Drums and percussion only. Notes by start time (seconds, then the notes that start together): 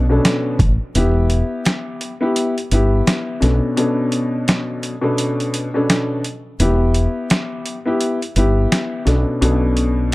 0.25 snare, closed hi-hat
0.59 kick, closed hi-hat
0.95 closed hi-hat
1.30 closed hi-hat
1.65 snare, closed hi-hat
2.01 closed hi-hat
2.36 closed hi-hat
2.58 closed hi-hat
2.71 closed hi-hat
3.07 snare, closed hi-hat
3.42 snare, closed hi-hat
3.77 closed hi-hat
4.12 closed hi-hat
4.48 snare, closed hi-hat
4.83 closed hi-hat
5.18 closed hi-hat
5.40 closed hi-hat
5.54 closed hi-hat
5.90 snare, closed hi-hat
6.24 closed hi-hat
6.60 closed hi-hat
6.94 closed hi-hat
7.30 snare, closed hi-hat
7.66 closed hi-hat
8.01 closed hi-hat
8.22 closed hi-hat
8.36 closed hi-hat
8.72 snare, closed hi-hat
9.07 snare, closed hi-hat
9.42 closed hi-hat
9.77 closed hi-hat